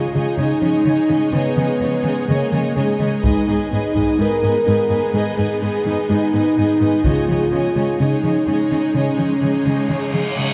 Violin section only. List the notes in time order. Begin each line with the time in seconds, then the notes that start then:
Already playing: D#5 G#5
0.13 D#5 G#5
0.38 D#5 G#5
0.62 D#5 G#5
0.86 D#5 G#5
1.09 D#5 G#5
1.33 D#5 G#5
1.57 D#5 G#5
1.81 D#5 G#5
2.04 D#5 G#5
2.28 D#5 G#5
2.52 D#5 G#5
2.76 D#5 G#5
3.00 D#5 G#5
3.24 D#5 G#5
3.47 D#5 G#5
3.70 D#5 G#5
3.94 D#5 G#5
4.18 D#5 G#5
4.41 D#5 G#5
4.65 D#5 G#5
4.89 D#5 G#5
5.13 D#5 G#5
5.38 D#5 G#5
5.62 D#5 G#5
5.85 D#5 G#5
6.09 D#5 G#5
6.33 D#5 G#5
6.57 D#5 G#5
6.80 D#5 G#5
7.05 D#5 G#5
7.28 D#5 G#5
7.52 D#5 G#5
7.76 D#5 G#5
7.99 D#5 G#5
8.23 D#5 G#5
8.46 D#5 G#5
8.70 D#5 G#5
8.94 D#5 G#5
9.18 D#5 G#5
9.42 D#5 G#5
9.65 D#5 G#5
9.89 D#5 G#5
10.13 D#5 G#5
10.38 D#5 G#5